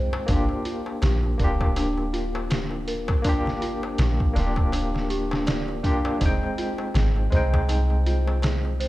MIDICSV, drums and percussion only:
0, 0, Header, 1, 3, 480
1, 0, Start_track
1, 0, Tempo, 740741
1, 185, Time_signature, 4, 2, 24, 8
1, 5756, End_track
2, 0, Start_track
2, 0, Title_t, "Darbuka"
2, 84, Note_on_c, 9, 63, 88
2, 149, Note_off_c, 9, 63, 0
2, 183, Note_on_c, 9, 63, 65
2, 248, Note_off_c, 9, 63, 0
2, 316, Note_on_c, 9, 63, 39
2, 381, Note_off_c, 9, 63, 0
2, 559, Note_on_c, 9, 63, 66
2, 623, Note_off_c, 9, 63, 0
2, 660, Note_on_c, 9, 63, 63
2, 725, Note_off_c, 9, 63, 0
2, 800, Note_on_c, 9, 63, 36
2, 865, Note_off_c, 9, 63, 0
2, 1041, Note_on_c, 9, 63, 78
2, 1106, Note_off_c, 9, 63, 0
2, 1144, Note_on_c, 9, 63, 68
2, 1208, Note_off_c, 9, 63, 0
2, 1280, Note_on_c, 9, 63, 40
2, 1345, Note_off_c, 9, 63, 0
2, 1523, Note_on_c, 9, 63, 78
2, 1587, Note_off_c, 9, 63, 0
2, 1622, Note_on_c, 9, 63, 61
2, 1687, Note_off_c, 9, 63, 0
2, 1754, Note_on_c, 9, 63, 39
2, 1819, Note_off_c, 9, 63, 0
2, 1996, Note_on_c, 9, 63, 89
2, 2061, Note_off_c, 9, 63, 0
2, 2101, Note_on_c, 9, 63, 62
2, 2166, Note_off_c, 9, 63, 0
2, 2242, Note_on_c, 9, 63, 35
2, 2307, Note_off_c, 9, 63, 0
2, 2483, Note_on_c, 9, 63, 71
2, 2547, Note_off_c, 9, 63, 0
2, 2585, Note_on_c, 9, 63, 68
2, 2650, Note_off_c, 9, 63, 0
2, 2721, Note_on_c, 9, 63, 40
2, 2786, Note_off_c, 9, 63, 0
2, 2956, Note_on_c, 9, 63, 74
2, 3021, Note_off_c, 9, 63, 0
2, 3061, Note_on_c, 9, 63, 59
2, 3126, Note_off_c, 9, 63, 0
2, 3204, Note_on_c, 9, 63, 40
2, 3269, Note_off_c, 9, 63, 0
2, 3443, Note_on_c, 9, 63, 82
2, 3508, Note_off_c, 9, 63, 0
2, 3543, Note_on_c, 9, 63, 58
2, 3607, Note_off_c, 9, 63, 0
2, 3683, Note_on_c, 9, 63, 39
2, 3748, Note_off_c, 9, 63, 0
2, 3920, Note_on_c, 9, 63, 86
2, 3985, Note_off_c, 9, 63, 0
2, 4025, Note_on_c, 9, 63, 64
2, 4090, Note_off_c, 9, 63, 0
2, 4168, Note_on_c, 9, 63, 34
2, 4233, Note_off_c, 9, 63, 0
2, 4396, Note_on_c, 9, 63, 64
2, 4461, Note_off_c, 9, 63, 0
2, 4500, Note_on_c, 9, 63, 59
2, 4565, Note_off_c, 9, 63, 0
2, 4641, Note_on_c, 9, 63, 39
2, 4706, Note_off_c, 9, 63, 0
2, 4884, Note_on_c, 9, 63, 76
2, 4949, Note_off_c, 9, 63, 0
2, 4981, Note_on_c, 9, 63, 60
2, 5046, Note_off_c, 9, 63, 0
2, 5120, Note_on_c, 9, 63, 36
2, 5185, Note_off_c, 9, 63, 0
2, 5362, Note_on_c, 9, 63, 72
2, 5427, Note_off_c, 9, 63, 0
2, 5459, Note_on_c, 9, 63, 59
2, 5524, Note_off_c, 9, 63, 0
2, 5604, Note_on_c, 9, 63, 36
2, 5669, Note_off_c, 9, 63, 0
2, 5756, End_track
3, 0, Start_track
3, 0, Title_t, "Drums"
3, 181, Note_on_c, 9, 46, 89
3, 183, Note_on_c, 9, 36, 113
3, 246, Note_off_c, 9, 46, 0
3, 248, Note_off_c, 9, 36, 0
3, 423, Note_on_c, 9, 46, 63
3, 488, Note_off_c, 9, 46, 0
3, 664, Note_on_c, 9, 46, 82
3, 671, Note_on_c, 9, 38, 97
3, 729, Note_off_c, 9, 46, 0
3, 735, Note_off_c, 9, 38, 0
3, 904, Note_on_c, 9, 36, 89
3, 904, Note_on_c, 9, 46, 62
3, 968, Note_off_c, 9, 36, 0
3, 969, Note_off_c, 9, 46, 0
3, 1042, Note_on_c, 9, 36, 87
3, 1107, Note_off_c, 9, 36, 0
3, 1143, Note_on_c, 9, 46, 84
3, 1207, Note_off_c, 9, 46, 0
3, 1386, Note_on_c, 9, 46, 60
3, 1450, Note_off_c, 9, 46, 0
3, 1624, Note_on_c, 9, 46, 78
3, 1631, Note_on_c, 9, 38, 110
3, 1689, Note_off_c, 9, 46, 0
3, 1696, Note_off_c, 9, 38, 0
3, 1864, Note_on_c, 9, 46, 66
3, 1929, Note_off_c, 9, 46, 0
3, 2002, Note_on_c, 9, 36, 92
3, 2067, Note_off_c, 9, 36, 0
3, 2103, Note_on_c, 9, 46, 88
3, 2104, Note_on_c, 9, 36, 110
3, 2167, Note_off_c, 9, 46, 0
3, 2168, Note_off_c, 9, 36, 0
3, 2251, Note_on_c, 9, 38, 37
3, 2315, Note_off_c, 9, 38, 0
3, 2346, Note_on_c, 9, 46, 62
3, 2411, Note_off_c, 9, 46, 0
3, 2581, Note_on_c, 9, 46, 81
3, 2588, Note_on_c, 9, 38, 108
3, 2646, Note_off_c, 9, 46, 0
3, 2653, Note_off_c, 9, 38, 0
3, 2723, Note_on_c, 9, 36, 92
3, 2787, Note_off_c, 9, 36, 0
3, 2826, Note_on_c, 9, 46, 66
3, 2833, Note_on_c, 9, 38, 41
3, 2891, Note_off_c, 9, 46, 0
3, 2898, Note_off_c, 9, 38, 0
3, 2963, Note_on_c, 9, 36, 89
3, 3028, Note_off_c, 9, 36, 0
3, 3066, Note_on_c, 9, 46, 87
3, 3131, Note_off_c, 9, 46, 0
3, 3212, Note_on_c, 9, 38, 34
3, 3277, Note_off_c, 9, 38, 0
3, 3307, Note_on_c, 9, 46, 64
3, 3371, Note_off_c, 9, 46, 0
3, 3454, Note_on_c, 9, 38, 53
3, 3519, Note_off_c, 9, 38, 0
3, 3546, Note_on_c, 9, 46, 80
3, 3552, Note_on_c, 9, 38, 112
3, 3611, Note_off_c, 9, 46, 0
3, 3617, Note_off_c, 9, 38, 0
3, 3784, Note_on_c, 9, 36, 90
3, 3786, Note_on_c, 9, 46, 66
3, 3849, Note_off_c, 9, 36, 0
3, 3851, Note_off_c, 9, 46, 0
3, 4024, Note_on_c, 9, 36, 113
3, 4024, Note_on_c, 9, 46, 91
3, 4088, Note_off_c, 9, 46, 0
3, 4089, Note_off_c, 9, 36, 0
3, 4265, Note_on_c, 9, 46, 63
3, 4330, Note_off_c, 9, 46, 0
3, 4505, Note_on_c, 9, 46, 76
3, 4512, Note_on_c, 9, 38, 106
3, 4570, Note_off_c, 9, 46, 0
3, 4577, Note_off_c, 9, 38, 0
3, 4745, Note_on_c, 9, 36, 84
3, 4745, Note_on_c, 9, 46, 60
3, 4809, Note_off_c, 9, 36, 0
3, 4810, Note_off_c, 9, 46, 0
3, 4883, Note_on_c, 9, 36, 84
3, 4948, Note_off_c, 9, 36, 0
3, 4984, Note_on_c, 9, 46, 86
3, 5049, Note_off_c, 9, 46, 0
3, 5226, Note_on_c, 9, 46, 63
3, 5291, Note_off_c, 9, 46, 0
3, 5464, Note_on_c, 9, 46, 83
3, 5470, Note_on_c, 9, 38, 113
3, 5528, Note_off_c, 9, 46, 0
3, 5535, Note_off_c, 9, 38, 0
3, 5706, Note_on_c, 9, 46, 69
3, 5756, Note_off_c, 9, 46, 0
3, 5756, End_track
0, 0, End_of_file